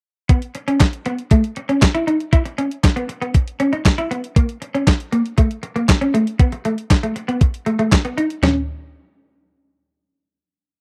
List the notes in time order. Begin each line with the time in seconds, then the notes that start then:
0.29 B3, kick, closed hi-hat
0.42 closed hi-hat
0.55 muted clean electric guitar stroke, closed hi-hat
0.68 C#4, closed hi-hat
0.80 kick, snare, clap, closed hi-hat
0.93 closed hi-hat
1.06 B3, closed hi-hat
1.19 closed hi-hat
1.31 A3, kick, closed hi-hat
1.44 closed hi-hat
1.56 muted clean electric guitar stroke, closed hi-hat
1.69 C#4, closed hi-hat
1.82 muted clean electric guitar stroke, kick, snare, clap, closed hi-hat
1.95 E4, closed hi-hat
2.07 D#4, closed hi-hat
2.20 closed hi-hat
2.33 E4, kick, closed hi-hat
2.45 muted clean electric guitar stroke, closed hi-hat
2.58 C#4, closed hi-hat
2.71 closed hi-hat
2.84 kick, snare, clap, closed hi-hat
2.96 B3, closed hi-hat
3.09 muted clean electric guitar stroke, closed hi-hat
3.22 B3, closed hi-hat
3.34 muted clean electric guitar stroke, kick, closed hi-hat
3.48 closed hi-hat
3.60 C#4, closed hi-hat
3.73 D#4, closed hi-hat
3.85 muted clean electric guitar stroke, kick, snare, clap, closed hi-hat
3.98 E4, closed hi-hat
4.11 B3, closed hi-hat
4.24 closed hi-hat
4.36 A#3, kick, closed hi-hat
4.49 closed hi-hat
4.62 muted clean electric guitar stroke, closed hi-hat
4.75 C#4, closed hi-hat
4.87 kick, snare, clap, closed hi-hat
5.00 closed hi-hat
5.12 A#3, closed hi-hat
5.26 closed hi-hat
5.38 A3, kick, closed hi-hat
5.51 closed hi-hat
5.63 muted clean electric guitar stroke, closed hi-hat
5.76 A#3, closed hi-hat
5.89 muted clean electric guitar stroke, kick, snare, clap, closed hi-hat
6.01 C#4, closed hi-hat
6.14 A3, closed hi-hat
6.27 closed hi-hat
6.39 B3, kick, closed hi-hat
6.52 muted clean electric guitar stroke, closed hi-hat
6.65 A3, closed hi-hat
6.78 closed hi-hat
6.90 kick, snare, clap, closed hi-hat
7.03 A3, closed hi-hat
7.16 muted clean electric guitar stroke, closed hi-hat
7.28 B3, closed hi-hat
7.41 muted clean electric guitar stroke, kick, closed hi-hat
7.54 closed hi-hat
7.66 A3, closed hi-hat
7.79 A3, closed hi-hat
7.92 muted clean electric guitar stroke, kick, snare, clap, closed hi-hat
8.05 B3, closed hi-hat
8.18 D#4, closed hi-hat
8.30 closed hi-hat
8.43 C#4, snare, floor tom